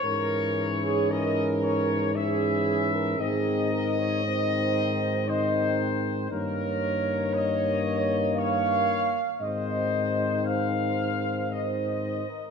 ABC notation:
X:1
M:3/4
L:1/16
Q:1/4=58
K:Ab
V:1 name="Trumpet section"
d4 e2 d2 _f4 | e8 c4 | B4 e4 d4 | c4 f4 e4 |]
V:2 name="French horn section"
B3 A B4 A3 B | A2 B d c4 e2 z2 | d8 f4 | e4 c4 c3 B |]
V:3 name="Euphonium"
D8 D4 | C4 C4 C4 | B,12 | C8- C3 z |]
V:4 name="Trombone" clef=bass
_F,8 F,4 | E,4 E,4 E,4 | E,12 | E,8- E,3 z |]
V:5 name="Tuba" clef=bass
A,,12 | A,,12 | G,,12 | A,,8- A,,3 z |]